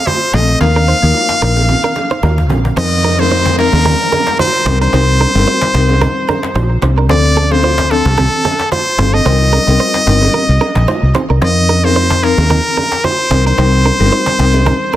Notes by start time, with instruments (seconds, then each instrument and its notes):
0.07 clean electric guitar F4 C5, trumpet C5, cajon bass, high bongo
0.33 fingered electric bass A#1, marimba F3 A3 C4 A4, trumpet D#5, cajon bass, cajon slap, low conga
0.60 fingered electric bass D#2, marimba F3 A#3 D#4 A#4, trumpet F5, cajon slap, low conga
0.76 clean electric guitar D4 A#4
0.88 clean electric guitar D#4 C5
1.02 fingered electric bass D#2, marimba F3 A#3 D#4 A#4
1.14 cajon slap, high bongo
1.29 cajon slap
1.42 fingered electric bass A#1, marimba F3 A#3 D#4 A#4, clean electric guitar D4 A#4, cajon bass, cajon slap, high bongo
1.57 low bongo
1.69 cajon slap, low conga
1.84 clean electric guitar D4 A#4, cajon slap
1.96 cajon slap, low bongo
2.10 clean electric guitar D#4 C5, cajon slap
2.23 fingered electric bass D#2, clean electric guitar D#4 A#4, cajon bass, high bongo
2.38 cajon bass
2.50 fingered electric bass A#1, cajon bass, low conga
2.65 cajon bass
2.77 fingered electric bass F2, marimba F3 C4 D#4 A#4, clean electric guitar D#4 C5, trumpet D#5, cajon bass, cajon slap, downlifter, low conga
3.04 clean electric guitar D4 A#4, cajon slap, low bongo
3.19 marimba F3 C4 D#4 A#4, trumpet C5, low bongo
3.30 clean electric guitar D#4 C5, high bongo
3.45 cajon bass, cajon slap
3.58 marimba F3 C4 D#4 A#4, trumpet A#4, cajon slap
3.73 fingered electric bass D#2, low bongo
3.85 clean electric guitar D#4 A#4, cajon bass, low conga
4.12 clean electric guitar D4 A#4, cajon bass, low bongo
4.27 cajon slap
4.39 clean electric guitar D#4 C5, trumpet C5, cajon bass, high bongo
4.66 fingered electric bass C2, marimba G3 C4 D#4 A#4, clean electric guitar D#4 C5, cajon bass, cajon slap, low conga
4.81 clean electric guitar D4 A#4, trumpet C5
4.93 fingered electric bass C2, marimba G3 C4 D#4 A#4, clean electric guitar D#4 C5, cajon slap, low conga
5.20 clean electric guitar D4 A#4, low bongo
5.35 fingered electric bass G1, marimba G3 C4 D#4 A#4, low bongo
5.47 clean electric guitar D#4 C5, high bongo
5.61 cajon bass, cajon slap
5.74 fingered electric bass C2, marimba G3 C4 D#4 A#4, cajon bass, cajon slap
5.89 low bongo
6.01 clean electric guitar D#4 A#4, cajon bass, low conga
6.29 clean electric guitar D4 A#4, cajon bass, low bongo
6.43 cajon slap
6.55 fingered electric bass A#1, clean electric guitar D#4 C5, cajon bass, high bongo
6.82 fingered electric bass C2, clean electric guitar D#4 C5, cajon slap, low conga
6.97 clean electric guitar D4 A#4, cajon slap
7.09 fingered electric bass D2, marimba F3 C4 D4 A4, clean electric guitar F4 C5, trumpet D5, cajon bass, cajon slap, low conga
7.36 clean electric guitar C4 A4, low bongo
7.51 marimba F3 C4 D4 A4, trumpet C5, low bongo
7.63 clean electric guitar F4 C5, high bongo
7.78 cajon bass, cajon slap
7.90 marimba F3 C4 D4 A4, trumpet A4, cajon slap
8.05 fingered electric bass C2, low bongo
8.18 clean electric guitar C4 A4, cajon bass, low conga
8.45 clean electric guitar C4 A4, cajon bass, low bongo
8.59 cajon slap
8.72 clean electric guitar F4 C5, trumpet C5, cajon bass, high bongo
8.98 fingered electric bass G1, marimba F3 C4 D4 A4, clean electric guitar D#4 C5, cajon bass, cajon slap, low conga
9.14 clean electric guitar C4 A4, trumpet D#5
9.25 fingered electric bass C2, marimba G3 C4 D#4 A#4, clean electric guitar D#4 C5, cajon slap, low conga
9.41 high bongo
9.53 clean electric guitar D4 A#4, low bongo
9.67 fingered electric bass C2, marimba G3 C4 D#4 A#4, cajon slap, low bongo
9.79 clean electric guitar D#4 C5, high bongo
9.94 cajon slap
10.06 fingered electric bass G1, marimba G3 C4 D#4 A#4, cajon bass, cajon slap, high bongo
10.22 low bongo
10.34 clean electric guitar D#4 A#4, cajon slap, low conga
10.49 fingered electric bass C2
10.61 clean electric guitar D4 A#4, low bongo
10.75 fingered electric bass A#1, cajon bass, cajon slap
10.88 clean electric guitar D#4 C5, cajon bass, high bongo
11.03 fingered electric bass C2
11.15 clean electric guitar D#4 C5, cajon slap, low conga
11.29 fingered electric bass C2, clean electric guitar D4 A#4, cajon slap
11.41 fingered electric bass F2, marimba F3 C4 D#4 A#4, clean electric guitar D#4 C5, trumpet D#5, cajon bass, cajon slap, low conga
11.69 clean electric guitar D4 A#4, cajon slap, low bongo
11.83 marimba F3 C4 D#4 A#4, trumpet C5, low bongo
11.95 clean electric guitar D#4 C5, high bongo
12.10 cajon bass, cajon slap
12.23 marimba F3 C4 D#4 A#4, trumpet A#4, cajon slap
12.38 fingered electric bass D#2, low bongo
12.50 clean electric guitar D#4 A#4, cajon bass, low conga
12.77 clean electric guitar D4 A#4, cajon bass, low bongo
12.92 cajon slap
13.04 clean electric guitar D#4 C5, trumpet C5, cajon bass, high bongo
13.31 fingered electric bass C2, marimba G3 C4 D#4 A#4, clean electric guitar D#4 C5, cajon bass, cajon slap, low conga
13.46 clean electric guitar D4 A#4, trumpet C5
13.58 fingered electric bass C2, marimba G3 C4 D#4 A#4, clean electric guitar D#4 C5, cajon slap, low conga
13.85 clean electric guitar D4 A#4, low bongo
14.00 fingered electric bass G1, marimba G3 C4 D#4 A#4, low bongo
14.11 clean electric guitar D#4 C5, high bongo
14.26 cajon bass, cajon slap
14.39 fingered electric bass C2, marimba G3 C4 D#4 A#4, cajon bass, cajon slap
14.54 low bongo
14.66 clean electric guitar D#4 A#4, cajon bass, low conga
14.93 cajon bass, low bongo